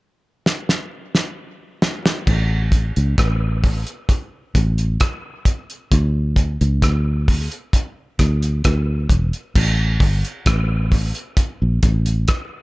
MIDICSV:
0, 0, Header, 1, 3, 480
1, 0, Start_track
1, 0, Tempo, 910056
1, 1197, Time_signature, 4, 2, 24, 8
1, 6657, End_track
2, 0, Start_track
2, 0, Title_t, "Fingered electric bass"
2, 0, Program_c, 0, 33
2, 1201, Note_on_c, 0, 33, 85
2, 1540, Note_off_c, 0, 33, 0
2, 1565, Note_on_c, 0, 37, 77
2, 1670, Note_off_c, 0, 37, 0
2, 1681, Note_on_c, 0, 33, 87
2, 2020, Note_off_c, 0, 33, 0
2, 2403, Note_on_c, 0, 33, 88
2, 2620, Note_off_c, 0, 33, 0
2, 3123, Note_on_c, 0, 38, 92
2, 3461, Note_off_c, 0, 38, 0
2, 3487, Note_on_c, 0, 37, 98
2, 3592, Note_off_c, 0, 37, 0
2, 3602, Note_on_c, 0, 38, 91
2, 3941, Note_off_c, 0, 38, 0
2, 4324, Note_on_c, 0, 38, 83
2, 4541, Note_off_c, 0, 38, 0
2, 4564, Note_on_c, 0, 38, 87
2, 4781, Note_off_c, 0, 38, 0
2, 4798, Note_on_c, 0, 28, 77
2, 4910, Note_off_c, 0, 28, 0
2, 5041, Note_on_c, 0, 33, 101
2, 5259, Note_off_c, 0, 33, 0
2, 5278, Note_on_c, 0, 31, 82
2, 5390, Note_off_c, 0, 31, 0
2, 5521, Note_on_c, 0, 33, 100
2, 5861, Note_off_c, 0, 33, 0
2, 6128, Note_on_c, 0, 34, 78
2, 6232, Note_off_c, 0, 34, 0
2, 6241, Note_on_c, 0, 33, 97
2, 6459, Note_off_c, 0, 33, 0
2, 6657, End_track
3, 0, Start_track
3, 0, Title_t, "Drums"
3, 243, Note_on_c, 9, 38, 51
3, 296, Note_off_c, 9, 38, 0
3, 364, Note_on_c, 9, 38, 58
3, 417, Note_off_c, 9, 38, 0
3, 605, Note_on_c, 9, 38, 63
3, 658, Note_off_c, 9, 38, 0
3, 961, Note_on_c, 9, 38, 88
3, 1014, Note_off_c, 9, 38, 0
3, 1084, Note_on_c, 9, 38, 84
3, 1137, Note_off_c, 9, 38, 0
3, 1198, Note_on_c, 9, 36, 90
3, 1198, Note_on_c, 9, 49, 77
3, 1250, Note_off_c, 9, 49, 0
3, 1251, Note_off_c, 9, 36, 0
3, 1434, Note_on_c, 9, 36, 93
3, 1439, Note_on_c, 9, 42, 81
3, 1487, Note_off_c, 9, 36, 0
3, 1491, Note_off_c, 9, 42, 0
3, 1563, Note_on_c, 9, 42, 52
3, 1616, Note_off_c, 9, 42, 0
3, 1677, Note_on_c, 9, 36, 109
3, 1677, Note_on_c, 9, 42, 85
3, 1684, Note_on_c, 9, 37, 97
3, 1730, Note_off_c, 9, 36, 0
3, 1730, Note_off_c, 9, 42, 0
3, 1736, Note_off_c, 9, 37, 0
3, 1918, Note_on_c, 9, 36, 89
3, 1920, Note_on_c, 9, 46, 70
3, 1971, Note_off_c, 9, 36, 0
3, 1973, Note_off_c, 9, 46, 0
3, 2040, Note_on_c, 9, 42, 55
3, 2092, Note_off_c, 9, 42, 0
3, 2156, Note_on_c, 9, 36, 106
3, 2159, Note_on_c, 9, 42, 84
3, 2209, Note_off_c, 9, 36, 0
3, 2212, Note_off_c, 9, 42, 0
3, 2399, Note_on_c, 9, 36, 89
3, 2399, Note_on_c, 9, 42, 95
3, 2452, Note_off_c, 9, 36, 0
3, 2452, Note_off_c, 9, 42, 0
3, 2522, Note_on_c, 9, 42, 55
3, 2574, Note_off_c, 9, 42, 0
3, 2637, Note_on_c, 9, 42, 84
3, 2641, Note_on_c, 9, 36, 117
3, 2642, Note_on_c, 9, 37, 119
3, 2690, Note_off_c, 9, 42, 0
3, 2694, Note_off_c, 9, 36, 0
3, 2695, Note_off_c, 9, 37, 0
3, 2877, Note_on_c, 9, 36, 83
3, 2879, Note_on_c, 9, 42, 69
3, 2929, Note_off_c, 9, 36, 0
3, 2931, Note_off_c, 9, 42, 0
3, 3005, Note_on_c, 9, 42, 46
3, 3058, Note_off_c, 9, 42, 0
3, 3120, Note_on_c, 9, 36, 101
3, 3121, Note_on_c, 9, 42, 82
3, 3173, Note_off_c, 9, 36, 0
3, 3174, Note_off_c, 9, 42, 0
3, 3356, Note_on_c, 9, 36, 88
3, 3362, Note_on_c, 9, 42, 77
3, 3409, Note_off_c, 9, 36, 0
3, 3414, Note_off_c, 9, 42, 0
3, 3486, Note_on_c, 9, 42, 47
3, 3539, Note_off_c, 9, 42, 0
3, 3599, Note_on_c, 9, 36, 106
3, 3599, Note_on_c, 9, 42, 86
3, 3606, Note_on_c, 9, 37, 92
3, 3652, Note_off_c, 9, 36, 0
3, 3652, Note_off_c, 9, 42, 0
3, 3658, Note_off_c, 9, 37, 0
3, 3841, Note_on_c, 9, 36, 85
3, 3843, Note_on_c, 9, 46, 74
3, 3893, Note_off_c, 9, 36, 0
3, 3896, Note_off_c, 9, 46, 0
3, 3964, Note_on_c, 9, 42, 55
3, 4017, Note_off_c, 9, 42, 0
3, 4078, Note_on_c, 9, 36, 96
3, 4081, Note_on_c, 9, 42, 85
3, 4131, Note_off_c, 9, 36, 0
3, 4134, Note_off_c, 9, 42, 0
3, 4320, Note_on_c, 9, 42, 86
3, 4321, Note_on_c, 9, 36, 88
3, 4323, Note_on_c, 9, 37, 72
3, 4373, Note_off_c, 9, 42, 0
3, 4374, Note_off_c, 9, 36, 0
3, 4376, Note_off_c, 9, 37, 0
3, 4443, Note_on_c, 9, 42, 60
3, 4496, Note_off_c, 9, 42, 0
3, 4558, Note_on_c, 9, 42, 91
3, 4562, Note_on_c, 9, 36, 119
3, 4563, Note_on_c, 9, 37, 117
3, 4611, Note_off_c, 9, 42, 0
3, 4615, Note_off_c, 9, 36, 0
3, 4616, Note_off_c, 9, 37, 0
3, 4797, Note_on_c, 9, 36, 74
3, 4800, Note_on_c, 9, 42, 68
3, 4850, Note_off_c, 9, 36, 0
3, 4853, Note_off_c, 9, 42, 0
3, 4922, Note_on_c, 9, 42, 41
3, 4975, Note_off_c, 9, 42, 0
3, 5040, Note_on_c, 9, 36, 97
3, 5041, Note_on_c, 9, 49, 99
3, 5092, Note_off_c, 9, 36, 0
3, 5094, Note_off_c, 9, 49, 0
3, 5276, Note_on_c, 9, 36, 97
3, 5282, Note_on_c, 9, 46, 56
3, 5328, Note_off_c, 9, 36, 0
3, 5335, Note_off_c, 9, 46, 0
3, 5404, Note_on_c, 9, 42, 53
3, 5457, Note_off_c, 9, 42, 0
3, 5517, Note_on_c, 9, 42, 93
3, 5518, Note_on_c, 9, 36, 119
3, 5523, Note_on_c, 9, 37, 106
3, 5569, Note_off_c, 9, 42, 0
3, 5571, Note_off_c, 9, 36, 0
3, 5576, Note_off_c, 9, 37, 0
3, 5758, Note_on_c, 9, 36, 90
3, 5758, Note_on_c, 9, 46, 78
3, 5811, Note_off_c, 9, 36, 0
3, 5811, Note_off_c, 9, 46, 0
3, 5880, Note_on_c, 9, 42, 57
3, 5933, Note_off_c, 9, 42, 0
3, 5996, Note_on_c, 9, 36, 106
3, 5998, Note_on_c, 9, 42, 90
3, 6049, Note_off_c, 9, 36, 0
3, 6051, Note_off_c, 9, 42, 0
3, 6238, Note_on_c, 9, 42, 88
3, 6239, Note_on_c, 9, 36, 97
3, 6290, Note_off_c, 9, 42, 0
3, 6292, Note_off_c, 9, 36, 0
3, 6360, Note_on_c, 9, 42, 67
3, 6412, Note_off_c, 9, 42, 0
3, 6475, Note_on_c, 9, 42, 85
3, 6480, Note_on_c, 9, 36, 127
3, 6480, Note_on_c, 9, 37, 124
3, 6528, Note_off_c, 9, 42, 0
3, 6532, Note_off_c, 9, 36, 0
3, 6533, Note_off_c, 9, 37, 0
3, 6657, End_track
0, 0, End_of_file